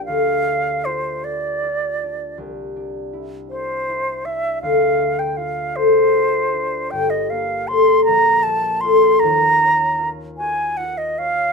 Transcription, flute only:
\new Staff \with { instrumentName = "Flute" } { \time 6/8 \key d \phrygian \tempo 4. = 52 f''4 c''8 d''4. | r4. c''4 e''8 | f''8. g''16 f''8 c''4. | g''16 ees''16 f''8 c'''8 bes''8 a''8 c'''8 |
bes''4~ bes''16 r16 aes''8 ges''16 ees''16 f''8 | }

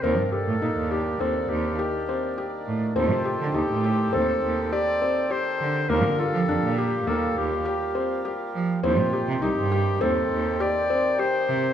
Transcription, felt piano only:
\new Staff \with { instrumentName = "Felt piano" } { \time 5/4 \key ees \lydian \tempo 4 = 102 c'8 g'8 ees'8 g'8 c'4 g'8 c'8 g'4 | c'8 g'8 ees'8 g'8 c'4 g'8 c'8 g'4 | bes8 f'8 d'8 g'8 bes4 g'8 c'8 g'4 | c'8 g'8 ees'8 g'8 c'4 g'8 c'8 g'4 | }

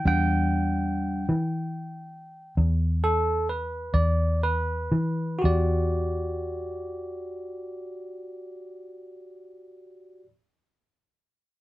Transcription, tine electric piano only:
\new Staff \with { instrumentName = "Tine electric piano" } { \time 12/8 \key e \minor \tempo 4. = 39 << { g''2. r8 a'8 b'8 d''8 b'4 | <fis' g' d''>1. | } \\ { <g d' fis''>4. r1 r8 | r1. | } >> }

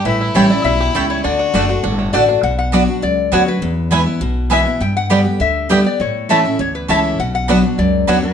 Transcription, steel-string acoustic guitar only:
\new Staff \with { instrumentName = "Steel-string acoustic guitar" } { \time 4/4 \key b \minor \tempo 4 = 202 << { r4 <e g cis' e'>8 <cis' e'>8 r2 | r4 <d a d' fis'>8 <d' fis'>8 r4 <d a d' fis'>8 <d' fis'>8 | r4 <fis b d' fis'>8 <d' fis'>8 r4 <fis b d' fis'>8 <d' fis'>8 | r4 <e gis b e'>8 <b e'>8 r4 <e gis b e'>8 <b e'>8 |
r4 <d g b g'>8 <b g'>8 r4 <d g b g'>8 <b g'>8 | r4 <e a cis' e'>8 <cis' e'>8 r4 <e a cis' e'>4 | r4 <fis b d' fis'>8 <d' fis'>8 r4 <fis b d' fis'>8 <d' fis'>8 | } \\ { a,2 b,4 cis4 | d2 a,2 | b,2 fis,2 | e,2 b,2 |
g,2 d2 | a,2 e,2 | b,2 fis,2 | } >> }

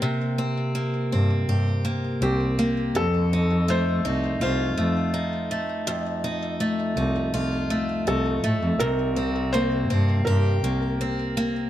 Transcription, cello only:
\new Staff \with { instrumentName = "Cello" } { \clef bass \time 4/4 \key c \dorian \tempo 4 = 82 r4. g,16 r16 g,16 r8. c,16 r8. | f,4. c,16 r16 c,16 r16 f,16 r4 r16 | r4. c,16 r16 c,16 r8. c,16 r16 a,16 f,16 | c,4. g,16 r16 g,16 r16 c,16 r4 r16 | }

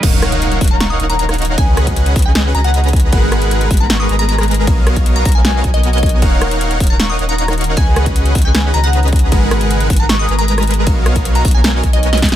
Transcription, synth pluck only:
\new Staff \with { instrumentName = "Synth pluck" } { \time 4/4 \key ees \minor \tempo 4 = 155 r4. r16 bes''16 des'''16 ees'''8 bes''16 bes''16 r8. | aes''16 r4. aes''16 r8 bes''16 ges''4 r16 | r4. r16 bes''16 des'''16 ees'''8 bes''16 bes''16 r8. | r4 r16 ais''16 ais''16 aes''16 aes''16 r8 dis''16 r16 dis''16 dis''8 |
r4. r16 bes''16 des'''16 ees'''8 bes''16 bes''16 r8. | aes''16 r4. aes''16 r8 bes''16 ges''4 r16 | r4. r16 bes''16 des'''16 ees'''8 bes''16 bes''16 r8. | r4 r16 ais''16 ais''16 aes''16 aes''16 r8 dis''16 r16 dis''16 dis''8 | }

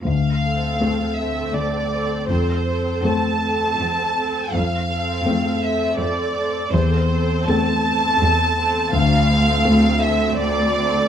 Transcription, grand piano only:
\new Staff \with { instrumentName = "Grand piano" } { \time 3/4 \key d \minor \tempo 4 = 82 d,4 <a c' a'>2 | f,4 <a c' a'>2 | f,4 <a c' a'>2 | e,4 <a c' a'>2 |
d,4 <a c' a'>2 | }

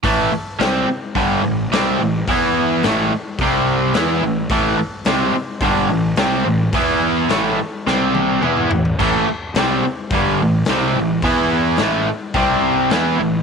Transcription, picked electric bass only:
\new Staff \with { instrumentName = "Picked electric bass" } { \clef bass \time 4/4 \key a \minor \tempo 4 = 107 a,,8 r8 c,8 r8 g,,8 a,,8 c,8 a,,8 | e,4 a,,8 r8 c,4 e,8 a,,8 | a,,8 r8 c,8 r8 g,,8 a,,8 c,8 a,,8 | e,4 a,,8 r8 c,4 e,8 a,,8 |
a,,8 r8 c,8 r8 g,,8 a,,8 c,8 a,,8 | e,4 a,,8 r8 c,4 e,8 a,,8 | }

